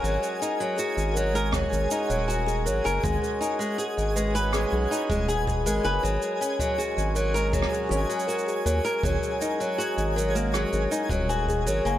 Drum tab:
SH |x-x-x-x-x-x-x-x-x-x-x-x-x-x-x-x-|x-x-x-x-x-x-x-x-x---x-x-x-x-x-x-|x-x-x-x-x-x-x-x-x-x-x-xxxxx-x-x-|x-x-x-x-x-x-x-x-x-x-x-x-x-x-x-x-|
SD |----------------r---------------|----------------r---------------|-----------------r--------------|----------------r---------------|
BD |----------------o---------------|o---------------------o---o-----|------o---------o---------------|o---------------------o---o-----|